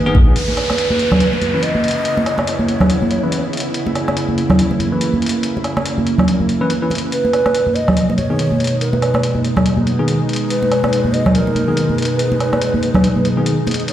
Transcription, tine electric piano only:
0, 0, Header, 1, 2, 480
1, 0, Start_track
1, 0, Tempo, 422535
1, 409, Time_signature, 4, 2, 24, 8
1, 15823, End_track
2, 0, Start_track
2, 0, Title_t, "Tine electric piano"
2, 0, Program_c, 0, 4
2, 71, Note_on_c, 0, 51, 100
2, 71, Note_on_c, 0, 59, 93
2, 71, Note_on_c, 0, 68, 110
2, 194, Note_off_c, 0, 51, 0
2, 194, Note_off_c, 0, 59, 0
2, 194, Note_off_c, 0, 68, 0
2, 1751, Note_on_c, 0, 52, 72
2, 1751, Note_on_c, 0, 61, 66
2, 1751, Note_on_c, 0, 71, 81
2, 1974, Note_off_c, 0, 52, 0
2, 1975, Note_off_c, 0, 61, 0
2, 1975, Note_off_c, 0, 71, 0
2, 3673, Note_on_c, 0, 52, 74
2, 3673, Note_on_c, 0, 71, 81
2, 3674, Note_on_c, 0, 61, 67
2, 3896, Note_off_c, 0, 52, 0
2, 3896, Note_off_c, 0, 61, 0
2, 3896, Note_off_c, 0, 71, 0
2, 5594, Note_on_c, 0, 52, 71
2, 5594, Note_on_c, 0, 71, 81
2, 5595, Note_on_c, 0, 61, 68
2, 5816, Note_off_c, 0, 52, 0
2, 5816, Note_off_c, 0, 71, 0
2, 5817, Note_off_c, 0, 61, 0
2, 7511, Note_on_c, 0, 71, 107
2, 7512, Note_on_c, 0, 52, 92
2, 7512, Note_on_c, 0, 61, 87
2, 7634, Note_off_c, 0, 71, 0
2, 7635, Note_off_c, 0, 52, 0
2, 7635, Note_off_c, 0, 61, 0
2, 7751, Note_on_c, 0, 61, 83
2, 7751, Note_on_c, 0, 71, 98
2, 7752, Note_on_c, 0, 52, 92
2, 7874, Note_off_c, 0, 71, 0
2, 7875, Note_off_c, 0, 52, 0
2, 7875, Note_off_c, 0, 61, 0
2, 9431, Note_on_c, 0, 51, 75
2, 9431, Note_on_c, 0, 59, 66
2, 9431, Note_on_c, 0, 68, 80
2, 9654, Note_off_c, 0, 59, 0
2, 9655, Note_off_c, 0, 51, 0
2, 9655, Note_off_c, 0, 68, 0
2, 11350, Note_on_c, 0, 51, 73
2, 11350, Note_on_c, 0, 59, 68
2, 11351, Note_on_c, 0, 68, 83
2, 11574, Note_off_c, 0, 51, 0
2, 11574, Note_off_c, 0, 59, 0
2, 11574, Note_off_c, 0, 68, 0
2, 13270, Note_on_c, 0, 68, 82
2, 13271, Note_on_c, 0, 51, 73
2, 13271, Note_on_c, 0, 59, 68
2, 13494, Note_off_c, 0, 51, 0
2, 13494, Note_off_c, 0, 59, 0
2, 13494, Note_off_c, 0, 68, 0
2, 15192, Note_on_c, 0, 51, 74
2, 15192, Note_on_c, 0, 68, 82
2, 15193, Note_on_c, 0, 59, 69
2, 15415, Note_off_c, 0, 51, 0
2, 15415, Note_off_c, 0, 59, 0
2, 15415, Note_off_c, 0, 68, 0
2, 15823, End_track
0, 0, End_of_file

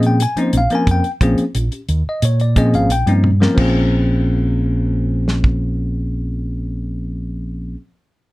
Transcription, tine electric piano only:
0, 0, Header, 1, 2, 480
1, 0, Start_track
1, 0, Tempo, 677124
1, 616, Time_signature, 4, 2, 24, 8
1, 5901, End_track
2, 0, Start_track
2, 0, Title_t, "Tine electric piano"
2, 0, Program_c, 0, 4
2, 0, Note_on_c, 0, 53, 71
2, 0, Note_on_c, 0, 58, 62
2, 0, Note_on_c, 0, 60, 70
2, 0, Note_on_c, 0, 61, 64
2, 0, Note_on_c, 0, 68, 82
2, 47, Note_on_c, 0, 79, 61
2, 129, Note_off_c, 0, 53, 0
2, 131, Note_off_c, 0, 58, 0
2, 132, Note_off_c, 0, 60, 0
2, 135, Note_off_c, 0, 61, 0
2, 135, Note_off_c, 0, 68, 0
2, 148, Note_off_c, 0, 79, 0
2, 159, Note_on_c, 0, 80, 80
2, 260, Note_on_c, 0, 53, 59
2, 263, Note_on_c, 0, 58, 55
2, 265, Note_off_c, 0, 80, 0
2, 265, Note_on_c, 0, 60, 53
2, 269, Note_on_c, 0, 61, 57
2, 273, Note_on_c, 0, 63, 70
2, 293, Note_on_c, 0, 72, 47
2, 391, Note_off_c, 0, 72, 0
2, 408, Note_on_c, 0, 77, 73
2, 412, Note_off_c, 0, 53, 0
2, 414, Note_off_c, 0, 58, 0
2, 415, Note_off_c, 0, 60, 0
2, 417, Note_off_c, 0, 61, 0
2, 419, Note_off_c, 0, 63, 0
2, 501, Note_on_c, 0, 53, 59
2, 501, Note_on_c, 0, 58, 52
2, 505, Note_on_c, 0, 60, 53
2, 510, Note_off_c, 0, 77, 0
2, 511, Note_on_c, 0, 61, 51
2, 514, Note_on_c, 0, 70, 65
2, 531, Note_on_c, 0, 80, 75
2, 630, Note_off_c, 0, 80, 0
2, 647, Note_on_c, 0, 79, 75
2, 731, Note_off_c, 0, 53, 0
2, 731, Note_off_c, 0, 58, 0
2, 733, Note_off_c, 0, 60, 0
2, 736, Note_off_c, 0, 61, 0
2, 738, Note_off_c, 0, 70, 0
2, 782, Note_off_c, 0, 79, 0
2, 858, Note_on_c, 0, 53, 72
2, 862, Note_on_c, 0, 58, 68
2, 867, Note_on_c, 0, 60, 66
2, 868, Note_on_c, 0, 61, 66
2, 873, Note_on_c, 0, 68, 76
2, 1012, Note_off_c, 0, 53, 0
2, 1014, Note_off_c, 0, 58, 0
2, 1017, Note_off_c, 0, 60, 0
2, 1017, Note_off_c, 0, 61, 0
2, 1020, Note_off_c, 0, 68, 0
2, 1100, Note_on_c, 0, 61, 26
2, 1112, Note_on_c, 0, 65, 27
2, 1156, Note_off_c, 0, 61, 0
2, 1162, Note_off_c, 0, 65, 0
2, 1213, Note_on_c, 0, 61, 25
2, 1228, Note_on_c, 0, 67, 29
2, 1272, Note_off_c, 0, 61, 0
2, 1279, Note_off_c, 0, 67, 0
2, 1481, Note_on_c, 0, 75, 62
2, 1585, Note_off_c, 0, 75, 0
2, 1595, Note_on_c, 0, 73, 58
2, 1703, Note_off_c, 0, 73, 0
2, 1711, Note_on_c, 0, 74, 60
2, 1815, Note_on_c, 0, 53, 74
2, 1819, Note_off_c, 0, 74, 0
2, 1821, Note_on_c, 0, 58, 63
2, 1822, Note_on_c, 0, 60, 66
2, 1826, Note_on_c, 0, 61, 68
2, 1829, Note_on_c, 0, 68, 82
2, 1831, Note_on_c, 0, 75, 67
2, 1941, Note_off_c, 0, 75, 0
2, 1950, Note_on_c, 0, 77, 67
2, 2048, Note_off_c, 0, 53, 0
2, 2051, Note_off_c, 0, 58, 0
2, 2051, Note_off_c, 0, 60, 0
2, 2053, Note_off_c, 0, 61, 0
2, 2055, Note_off_c, 0, 68, 0
2, 2059, Note_off_c, 0, 77, 0
2, 2068, Note_on_c, 0, 79, 69
2, 2175, Note_on_c, 0, 53, 57
2, 2178, Note_on_c, 0, 58, 56
2, 2180, Note_on_c, 0, 60, 53
2, 2186, Note_on_c, 0, 61, 52
2, 2186, Note_on_c, 0, 63, 65
2, 2209, Note_off_c, 0, 79, 0
2, 2330, Note_off_c, 0, 53, 0
2, 2332, Note_off_c, 0, 58, 0
2, 2332, Note_off_c, 0, 60, 0
2, 2336, Note_off_c, 0, 61, 0
2, 2336, Note_off_c, 0, 63, 0
2, 2413, Note_on_c, 0, 53, 65
2, 2419, Note_on_c, 0, 58, 59
2, 2420, Note_on_c, 0, 60, 60
2, 2426, Note_on_c, 0, 61, 60
2, 2429, Note_on_c, 0, 70, 71
2, 2505, Note_off_c, 0, 53, 0
2, 2514, Note_on_c, 0, 53, 66
2, 2517, Note_off_c, 0, 58, 0
2, 2525, Note_on_c, 0, 58, 54
2, 2531, Note_off_c, 0, 60, 0
2, 2539, Note_on_c, 0, 60, 58
2, 2541, Note_off_c, 0, 61, 0
2, 2542, Note_off_c, 0, 70, 0
2, 2551, Note_on_c, 0, 61, 60
2, 2565, Note_on_c, 0, 68, 66
2, 5480, Note_off_c, 0, 53, 0
2, 5486, Note_off_c, 0, 58, 0
2, 5493, Note_off_c, 0, 60, 0
2, 5498, Note_off_c, 0, 61, 0
2, 5505, Note_off_c, 0, 68, 0
2, 5901, End_track
0, 0, End_of_file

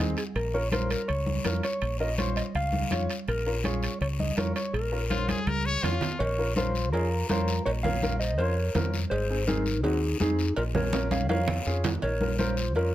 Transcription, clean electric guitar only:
0, 0, Header, 1, 2, 480
1, 0, Start_track
1, 0, Key_signature, -5, "minor"
1, 0, Tempo, 364742
1, 465, Time_signature, 4, 2, 24, 8
1, 17037, End_track
2, 0, Start_track
2, 0, Title_t, "Clean electric guitar"
2, 0, Program_c, 0, 27
2, 0, Note_on_c, 0, 75, 89
2, 180, Note_off_c, 0, 75, 0
2, 233, Note_on_c, 0, 68, 74
2, 298, Note_off_c, 0, 68, 0
2, 472, Note_on_c, 0, 70, 85
2, 714, Note_on_c, 0, 73, 89
2, 716, Note_off_c, 0, 70, 0
2, 945, Note_off_c, 0, 73, 0
2, 950, Note_on_c, 0, 72, 79
2, 1172, Note_off_c, 0, 72, 0
2, 1195, Note_on_c, 0, 70, 77
2, 1414, Note_off_c, 0, 70, 0
2, 1424, Note_on_c, 0, 73, 92
2, 2096, Note_off_c, 0, 73, 0
2, 2165, Note_on_c, 0, 73, 94
2, 2604, Note_off_c, 0, 73, 0
2, 2641, Note_on_c, 0, 75, 89
2, 2859, Note_off_c, 0, 75, 0
2, 2876, Note_on_c, 0, 73, 85
2, 3096, Note_off_c, 0, 73, 0
2, 3114, Note_on_c, 0, 75, 80
2, 3180, Note_off_c, 0, 75, 0
2, 3363, Note_on_c, 0, 77, 93
2, 4028, Note_off_c, 0, 77, 0
2, 4326, Note_on_c, 0, 70, 84
2, 4766, Note_off_c, 0, 70, 0
2, 4804, Note_on_c, 0, 73, 77
2, 5246, Note_off_c, 0, 73, 0
2, 5285, Note_on_c, 0, 73, 86
2, 5351, Note_off_c, 0, 73, 0
2, 5527, Note_on_c, 0, 75, 84
2, 5767, Note_off_c, 0, 75, 0
2, 5774, Note_on_c, 0, 73, 82
2, 5985, Note_off_c, 0, 73, 0
2, 6001, Note_on_c, 0, 73, 78
2, 6221, Note_off_c, 0, 73, 0
2, 6230, Note_on_c, 0, 70, 71
2, 7191, Note_off_c, 0, 70, 0
2, 7191, Note_on_c, 0, 68, 71
2, 7620, Note_off_c, 0, 68, 0
2, 8148, Note_on_c, 0, 73, 98
2, 8165, Note_on_c, 0, 70, 74
2, 8598, Note_off_c, 0, 73, 0
2, 8607, Note_off_c, 0, 70, 0
2, 8644, Note_on_c, 0, 72, 93
2, 8650, Note_on_c, 0, 65, 73
2, 9086, Note_off_c, 0, 72, 0
2, 9089, Note_off_c, 0, 65, 0
2, 9114, Note_on_c, 0, 70, 91
2, 9123, Note_on_c, 0, 65, 75
2, 9561, Note_off_c, 0, 70, 0
2, 9565, Note_off_c, 0, 65, 0
2, 9605, Note_on_c, 0, 65, 67
2, 9608, Note_on_c, 0, 70, 90
2, 10046, Note_off_c, 0, 70, 0
2, 10047, Note_off_c, 0, 65, 0
2, 10074, Note_on_c, 0, 73, 108
2, 10084, Note_on_c, 0, 70, 78
2, 10140, Note_off_c, 0, 73, 0
2, 10150, Note_off_c, 0, 70, 0
2, 10308, Note_on_c, 0, 77, 111
2, 10323, Note_on_c, 0, 73, 86
2, 10757, Note_off_c, 0, 77, 0
2, 10765, Note_off_c, 0, 73, 0
2, 10786, Note_on_c, 0, 75, 91
2, 10796, Note_on_c, 0, 72, 66
2, 11018, Note_off_c, 0, 72, 0
2, 11025, Note_on_c, 0, 73, 95
2, 11037, Note_off_c, 0, 75, 0
2, 11039, Note_on_c, 0, 70, 75
2, 11512, Note_off_c, 0, 73, 0
2, 11512, Note_on_c, 0, 72, 95
2, 11698, Note_off_c, 0, 72, 0
2, 11706, Note_off_c, 0, 70, 0
2, 11976, Note_on_c, 0, 72, 94
2, 11992, Note_on_c, 0, 68, 75
2, 12438, Note_off_c, 0, 68, 0
2, 12465, Note_on_c, 0, 63, 69
2, 12469, Note_on_c, 0, 70, 85
2, 12478, Note_off_c, 0, 72, 0
2, 12914, Note_off_c, 0, 70, 0
2, 12915, Note_off_c, 0, 63, 0
2, 12941, Note_on_c, 0, 68, 93
2, 12957, Note_on_c, 0, 63, 71
2, 13391, Note_off_c, 0, 68, 0
2, 13400, Note_off_c, 0, 63, 0
2, 13429, Note_on_c, 0, 68, 91
2, 13435, Note_on_c, 0, 63, 72
2, 13875, Note_off_c, 0, 68, 0
2, 13879, Note_off_c, 0, 63, 0
2, 13911, Note_on_c, 0, 70, 93
2, 13921, Note_on_c, 0, 65, 68
2, 13977, Note_off_c, 0, 70, 0
2, 13986, Note_off_c, 0, 65, 0
2, 14147, Note_on_c, 0, 73, 92
2, 14153, Note_on_c, 0, 70, 72
2, 14594, Note_off_c, 0, 73, 0
2, 14597, Note_off_c, 0, 70, 0
2, 14631, Note_on_c, 0, 77, 94
2, 14632, Note_on_c, 0, 73, 66
2, 14850, Note_off_c, 0, 77, 0
2, 14854, Note_off_c, 0, 73, 0
2, 14866, Note_on_c, 0, 77, 97
2, 14877, Note_on_c, 0, 73, 79
2, 15535, Note_off_c, 0, 77, 0
2, 15541, Note_off_c, 0, 73, 0
2, 15829, Note_on_c, 0, 73, 97
2, 15837, Note_on_c, 0, 70, 70
2, 16273, Note_off_c, 0, 73, 0
2, 16277, Note_off_c, 0, 70, 0
2, 16304, Note_on_c, 0, 72, 91
2, 16309, Note_on_c, 0, 65, 70
2, 16750, Note_off_c, 0, 72, 0
2, 16753, Note_off_c, 0, 65, 0
2, 16792, Note_on_c, 0, 65, 70
2, 16802, Note_on_c, 0, 70, 93
2, 17037, Note_off_c, 0, 65, 0
2, 17037, Note_off_c, 0, 70, 0
2, 17037, End_track
0, 0, End_of_file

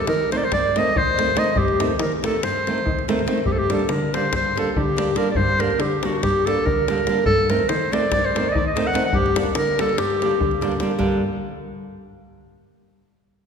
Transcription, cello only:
0, 0, Header, 1, 2, 480
1, 0, Start_track
1, 0, Key_signature, -2, "minor"
1, 0, Tempo, 422833
1, 1765, Time_signature, 9, 3, 24, 8
1, 7752, Tempo, 415225
1, 15421, End_track
2, 0, Start_track
2, 0, Title_t, "Cello"
2, 0, Program_c, 0, 42
2, 84, Note_on_c, 0, 51, 103
2, 385, Note_off_c, 0, 51, 0
2, 587, Note_on_c, 0, 43, 83
2, 887, Note_off_c, 0, 43, 0
2, 1090, Note_on_c, 0, 51, 89
2, 1240, Note_off_c, 0, 51, 0
2, 1767, Note_on_c, 0, 43, 102
2, 2065, Note_off_c, 0, 43, 0
2, 2262, Note_on_c, 0, 51, 103
2, 2560, Note_off_c, 0, 51, 0
2, 2757, Note_on_c, 0, 43, 75
2, 3055, Note_off_c, 0, 43, 0
2, 3249, Note_on_c, 0, 51, 91
2, 3401, Note_off_c, 0, 51, 0
2, 3925, Note_on_c, 0, 43, 98
2, 4223, Note_off_c, 0, 43, 0
2, 4422, Note_on_c, 0, 50, 104
2, 4719, Note_off_c, 0, 50, 0
2, 4923, Note_on_c, 0, 43, 77
2, 5218, Note_off_c, 0, 43, 0
2, 5418, Note_on_c, 0, 50, 97
2, 5566, Note_off_c, 0, 50, 0
2, 6089, Note_on_c, 0, 43, 116
2, 6383, Note_off_c, 0, 43, 0
2, 6578, Note_on_c, 0, 50, 101
2, 6872, Note_off_c, 0, 50, 0
2, 7074, Note_on_c, 0, 43, 95
2, 7366, Note_off_c, 0, 43, 0
2, 7564, Note_on_c, 0, 50, 89
2, 7710, Note_off_c, 0, 50, 0
2, 8256, Note_on_c, 0, 43, 120
2, 8548, Note_off_c, 0, 43, 0
2, 8756, Note_on_c, 0, 51, 98
2, 9047, Note_off_c, 0, 51, 0
2, 9247, Note_on_c, 0, 43, 85
2, 9540, Note_off_c, 0, 43, 0
2, 9746, Note_on_c, 0, 51, 89
2, 9890, Note_off_c, 0, 51, 0
2, 10411, Note_on_c, 0, 43, 111
2, 10706, Note_off_c, 0, 43, 0
2, 10909, Note_on_c, 0, 50, 94
2, 11203, Note_off_c, 0, 50, 0
2, 11395, Note_on_c, 0, 43, 85
2, 11692, Note_off_c, 0, 43, 0
2, 11887, Note_on_c, 0, 50, 87
2, 12037, Note_off_c, 0, 50, 0
2, 12556, Note_on_c, 0, 43, 86
2, 12814, Note_off_c, 0, 43, 0
2, 15421, End_track
0, 0, End_of_file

